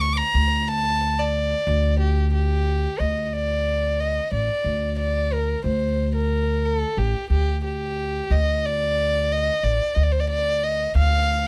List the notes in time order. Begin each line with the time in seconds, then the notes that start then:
Already playing: D2
0.01 C#6
0.13 D6
0.18 A#5
0.34 D2
0.68 A5
1.19 D5
1.67 D2
2.00 G4
2.34 G4
2.99 D2 D#5
3.25 D#5
3.33 D5
4.00 D#5
4.32 A1 D5
4.64 D2
4.99 D5
5.33 A#4
5.64 D2 C5
6.16 A#4
6.66 A4
6.97 A1 G4
7.30 D2 G4
7.64 G4
8.30 D2 D#5
8.66 D5
9.32 D#5
9.63 A1 D5
9.94 D2 D#5
10.03 D5
10.12 C5
10.20 D5
10.30 D5
10.63 D#5
10.95 D2 F5